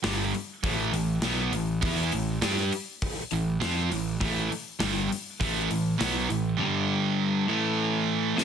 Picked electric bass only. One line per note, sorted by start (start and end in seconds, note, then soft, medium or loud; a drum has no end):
0.04 0.32 G1 medium
0.35 muted picked electric bass stroke soft
0.63 0.91 A1 medium
0.92 1.20 A1 medium
1.22 1.50 B1 medium
1.52 1.80 A1 medium
1.83 2.10 E2 medium
2.13 2.40 A1 medium
2.42 2.70 G2 medium
3.32 3.60 A1 medium
3.62 3.89 F2 medium
3.92 4.19 A1 medium
4.21 4.49 A1 medium
4.52 muted picked electric bass stroke soft
4.81 5.09 G1 medium
5.12 muted picked electric bass stroke soft
5.41 5.68 A1 medium
5.70 5.98 A1 medium
6.00 6.28 B1 medium
6.30 6.58 A1 medium